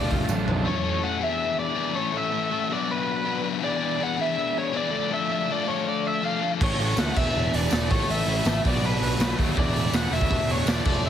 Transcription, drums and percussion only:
0, 0, Header, 1, 2, 480
1, 0, Start_track
1, 0, Tempo, 370599
1, 861, Time_signature, 4, 2, 24, 8
1, 14369, End_track
2, 0, Start_track
2, 0, Title_t, "Drums"
2, 134, Note_on_c, 9, 46, 55
2, 140, Note_on_c, 9, 36, 83
2, 264, Note_off_c, 9, 46, 0
2, 270, Note_off_c, 9, 36, 0
2, 372, Note_on_c, 9, 54, 102
2, 378, Note_on_c, 9, 48, 61
2, 501, Note_off_c, 9, 54, 0
2, 508, Note_off_c, 9, 48, 0
2, 620, Note_on_c, 9, 43, 85
2, 749, Note_off_c, 9, 43, 0
2, 8561, Note_on_c, 9, 36, 119
2, 8566, Note_on_c, 9, 49, 112
2, 8690, Note_off_c, 9, 36, 0
2, 8696, Note_off_c, 9, 49, 0
2, 8803, Note_on_c, 9, 46, 63
2, 8933, Note_off_c, 9, 46, 0
2, 9025, Note_on_c, 9, 54, 97
2, 9039, Note_on_c, 9, 46, 82
2, 9043, Note_on_c, 9, 38, 111
2, 9155, Note_off_c, 9, 54, 0
2, 9168, Note_off_c, 9, 46, 0
2, 9172, Note_off_c, 9, 38, 0
2, 9278, Note_on_c, 9, 57, 106
2, 9281, Note_on_c, 9, 36, 102
2, 9407, Note_off_c, 9, 57, 0
2, 9411, Note_off_c, 9, 36, 0
2, 9761, Note_on_c, 9, 46, 67
2, 9890, Note_off_c, 9, 46, 0
2, 9982, Note_on_c, 9, 54, 94
2, 10003, Note_on_c, 9, 46, 93
2, 10007, Note_on_c, 9, 38, 115
2, 10111, Note_off_c, 9, 54, 0
2, 10133, Note_off_c, 9, 46, 0
2, 10137, Note_off_c, 9, 38, 0
2, 10241, Note_on_c, 9, 46, 68
2, 10242, Note_on_c, 9, 36, 107
2, 10371, Note_off_c, 9, 46, 0
2, 10372, Note_off_c, 9, 36, 0
2, 10487, Note_on_c, 9, 46, 98
2, 10616, Note_off_c, 9, 46, 0
2, 10721, Note_on_c, 9, 46, 71
2, 10850, Note_off_c, 9, 46, 0
2, 10946, Note_on_c, 9, 54, 94
2, 10959, Note_on_c, 9, 46, 92
2, 10963, Note_on_c, 9, 38, 111
2, 11076, Note_off_c, 9, 54, 0
2, 11088, Note_off_c, 9, 46, 0
2, 11092, Note_off_c, 9, 38, 0
2, 11204, Note_on_c, 9, 36, 113
2, 11210, Note_on_c, 9, 46, 66
2, 11334, Note_off_c, 9, 36, 0
2, 11339, Note_off_c, 9, 46, 0
2, 11450, Note_on_c, 9, 46, 79
2, 11579, Note_off_c, 9, 46, 0
2, 11686, Note_on_c, 9, 46, 62
2, 11816, Note_off_c, 9, 46, 0
2, 11916, Note_on_c, 9, 54, 93
2, 11927, Note_on_c, 9, 46, 90
2, 11931, Note_on_c, 9, 38, 116
2, 12045, Note_off_c, 9, 54, 0
2, 12057, Note_off_c, 9, 46, 0
2, 12061, Note_off_c, 9, 38, 0
2, 12159, Note_on_c, 9, 36, 91
2, 12166, Note_on_c, 9, 46, 65
2, 12289, Note_off_c, 9, 36, 0
2, 12295, Note_off_c, 9, 46, 0
2, 12396, Note_on_c, 9, 36, 124
2, 12403, Note_on_c, 9, 46, 81
2, 12526, Note_off_c, 9, 36, 0
2, 12533, Note_off_c, 9, 46, 0
2, 12642, Note_on_c, 9, 46, 58
2, 12771, Note_off_c, 9, 46, 0
2, 12868, Note_on_c, 9, 54, 98
2, 12874, Note_on_c, 9, 46, 84
2, 12878, Note_on_c, 9, 38, 117
2, 12998, Note_off_c, 9, 54, 0
2, 13004, Note_off_c, 9, 46, 0
2, 13008, Note_off_c, 9, 38, 0
2, 13115, Note_on_c, 9, 46, 62
2, 13228, Note_on_c, 9, 36, 94
2, 13244, Note_off_c, 9, 46, 0
2, 13350, Note_off_c, 9, 36, 0
2, 13350, Note_on_c, 9, 36, 101
2, 13355, Note_on_c, 9, 46, 87
2, 13479, Note_off_c, 9, 36, 0
2, 13484, Note_off_c, 9, 46, 0
2, 13595, Note_on_c, 9, 46, 64
2, 13724, Note_off_c, 9, 46, 0
2, 13817, Note_on_c, 9, 54, 95
2, 13830, Note_on_c, 9, 46, 87
2, 13834, Note_on_c, 9, 38, 118
2, 13947, Note_off_c, 9, 54, 0
2, 13959, Note_off_c, 9, 46, 0
2, 13963, Note_off_c, 9, 38, 0
2, 14056, Note_on_c, 9, 57, 106
2, 14063, Note_on_c, 9, 36, 110
2, 14186, Note_off_c, 9, 57, 0
2, 14192, Note_off_c, 9, 36, 0
2, 14369, End_track
0, 0, End_of_file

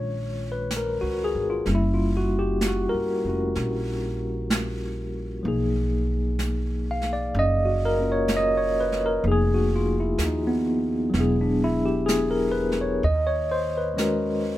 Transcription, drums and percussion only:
0, 0, Header, 1, 2, 480
1, 0, Start_track
1, 0, Key_signature, -6, "minor"
1, 0, Tempo, 947867
1, 842, Time_signature, 4, 2, 24, 8
1, 7383, End_track
2, 0, Start_track
2, 0, Title_t, "Drums"
2, 358, Note_on_c, 9, 25, 40
2, 358, Note_on_c, 9, 38, 43
2, 358, Note_on_c, 9, 44, 53
2, 408, Note_off_c, 9, 38, 0
2, 408, Note_off_c, 9, 44, 0
2, 839, Note_off_c, 9, 25, 0
2, 839, Note_on_c, 9, 25, 36
2, 839, Note_on_c, 9, 38, 31
2, 890, Note_off_c, 9, 38, 0
2, 1322, Note_off_c, 9, 25, 0
2, 1322, Note_on_c, 9, 25, 35
2, 1322, Note_on_c, 9, 38, 46
2, 1322, Note_on_c, 9, 44, 51
2, 1373, Note_off_c, 9, 38, 0
2, 1373, Note_off_c, 9, 44, 0
2, 1800, Note_off_c, 9, 25, 0
2, 1800, Note_on_c, 9, 25, 41
2, 1800, Note_on_c, 9, 38, 30
2, 1850, Note_off_c, 9, 38, 0
2, 2280, Note_off_c, 9, 25, 0
2, 2280, Note_on_c, 9, 25, 42
2, 2280, Note_on_c, 9, 38, 49
2, 2280, Note_on_c, 9, 44, 53
2, 2331, Note_off_c, 9, 38, 0
2, 2331, Note_off_c, 9, 44, 0
2, 2760, Note_off_c, 9, 25, 0
2, 2760, Note_on_c, 9, 25, 40
2, 3235, Note_off_c, 9, 25, 0
2, 3235, Note_on_c, 9, 25, 42
2, 3235, Note_on_c, 9, 38, 46
2, 3235, Note_on_c, 9, 44, 52
2, 3286, Note_off_c, 9, 38, 0
2, 3286, Note_off_c, 9, 44, 0
2, 3553, Note_on_c, 9, 38, 27
2, 3603, Note_off_c, 9, 38, 0
2, 3718, Note_off_c, 9, 25, 0
2, 3718, Note_on_c, 9, 25, 37
2, 4194, Note_off_c, 9, 25, 0
2, 4194, Note_on_c, 9, 25, 35
2, 4194, Note_on_c, 9, 38, 50
2, 4194, Note_on_c, 9, 44, 52
2, 4244, Note_off_c, 9, 38, 0
2, 4244, Note_off_c, 9, 44, 0
2, 4518, Note_on_c, 9, 38, 28
2, 4569, Note_off_c, 9, 38, 0
2, 4680, Note_off_c, 9, 25, 0
2, 4680, Note_on_c, 9, 25, 35
2, 5158, Note_off_c, 9, 25, 0
2, 5158, Note_on_c, 9, 25, 36
2, 5158, Note_on_c, 9, 38, 49
2, 5158, Note_on_c, 9, 44, 59
2, 5208, Note_off_c, 9, 38, 0
2, 5208, Note_off_c, 9, 44, 0
2, 5639, Note_off_c, 9, 25, 0
2, 5639, Note_on_c, 9, 25, 33
2, 5639, Note_on_c, 9, 38, 30
2, 5690, Note_off_c, 9, 38, 0
2, 6119, Note_off_c, 9, 25, 0
2, 6119, Note_on_c, 9, 25, 37
2, 6119, Note_on_c, 9, 38, 48
2, 6119, Note_on_c, 9, 44, 57
2, 6170, Note_off_c, 9, 38, 0
2, 6170, Note_off_c, 9, 44, 0
2, 6440, Note_on_c, 9, 38, 27
2, 6490, Note_off_c, 9, 38, 0
2, 6600, Note_off_c, 9, 25, 0
2, 6600, Note_on_c, 9, 25, 45
2, 7080, Note_off_c, 9, 25, 0
2, 7080, Note_on_c, 9, 25, 38
2, 7080, Note_on_c, 9, 38, 45
2, 7080, Note_on_c, 9, 44, 54
2, 7131, Note_off_c, 9, 38, 0
2, 7131, Note_off_c, 9, 44, 0
2, 7383, Note_off_c, 9, 25, 0
2, 7383, End_track
0, 0, End_of_file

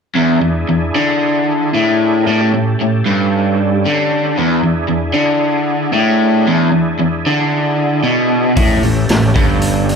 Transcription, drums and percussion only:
0, 0, Header, 1, 2, 480
1, 0, Start_track
1, 0, Tempo, 526778
1, 139, Time_signature, 4, 2, 24, 8
1, 9071, End_track
2, 0, Start_track
2, 0, Title_t, "Drums"
2, 7804, Note_on_c, 9, 46, 62
2, 7808, Note_on_c, 9, 36, 95
2, 7895, Note_off_c, 9, 46, 0
2, 7899, Note_off_c, 9, 36, 0
2, 8044, Note_on_c, 9, 46, 43
2, 8135, Note_off_c, 9, 46, 0
2, 8282, Note_on_c, 9, 46, 65
2, 8293, Note_on_c, 9, 38, 103
2, 8373, Note_off_c, 9, 46, 0
2, 8384, Note_off_c, 9, 38, 0
2, 8524, Note_on_c, 9, 46, 46
2, 8526, Note_on_c, 9, 36, 94
2, 8615, Note_off_c, 9, 46, 0
2, 8617, Note_off_c, 9, 36, 0
2, 8761, Note_on_c, 9, 46, 66
2, 8852, Note_off_c, 9, 46, 0
2, 9011, Note_on_c, 9, 46, 48
2, 9071, Note_off_c, 9, 46, 0
2, 9071, End_track
0, 0, End_of_file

